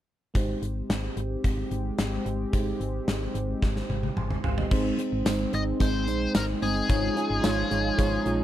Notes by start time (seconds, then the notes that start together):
0.34 G#1 G#3 C4 D#4 G4 C5, kick, closed hi-hat
0.62 G#1, closed hi-hat
0.90 G#1, snare, closed hi-hat
1.17 G#1, closed hi-hat
1.44 G#1, kick, closed hi-hat
1.71 G#1, closed hi-hat
1.98 G#1, snare, closed hi-hat
2.26 G#1, closed hi-hat
2.52 G#1 G#3 D#4 G4 C5, kick, closed hi-hat
2.80 G#1, closed hi-hat
3.08 G#1, snare, closed hi-hat
3.35 G#1, closed hi-hat
3.62 G#1, kick, snare
3.76 snare
3.90 G#1, high tom
4.03 high tom
4.17 G#1 G#5 C6, mid tom
4.30 mid tom
4.44 G#1 F5 G#5, floor tom
4.58 C5 D#5, floor tom
4.71 G#1 G#3 C4 D#4 C5, kick, crash
4.98 G#3 C4 D#4 C5, closed hi-hat
5.12 G#1
5.25 G#1 G#3 C4 D#4 C5, snare, closed hi-hat, tambourine
5.52 G#1 G#3 C4 D#4 C5 D#5, closed hi-hat
5.80 G#1 G#3 C4 D#4 C5, kick, closed hi-hat
6.07 A#1 G#3 C4 D#4 C5, closed hi-hat
6.34 G#1 G#3 C4 D#4 A#4 C5, snare, closed hi-hat, tambourine
6.61 G1 G#3 C4 D#4 G#4 C5, open hi-hat
6.88 G#1 F3 G#3 C#4 D#4 F4 C#5, kick, closed hi-hat
7.16 G#3 F4 G#4 C#5, closed hi-hat
7.30 G#1
7.43 G#1 G#3 D#4 F4 C#5, snare, closed hi-hat, tambourine
7.71 G#1 G#3 D#4 F4 C#5, closed hi-hat
7.98 G#1 G#3 D#4 F4 C#5, kick, closed hi-hat
8.25 A#1 G#3 D#4 F4 C#5, closed hi-hat